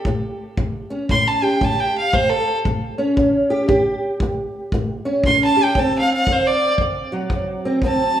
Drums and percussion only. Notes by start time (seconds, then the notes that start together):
0.05 kick
0.57 kick
1.09 kick
1.61 kick
2.13 kick
2.65 kick
3.17 kick
3.69 kick
4.20 kick
4.72 kick
5.24 kick
5.75 kick
6.27 kick
6.78 kick
7.30 kick
7.82 kick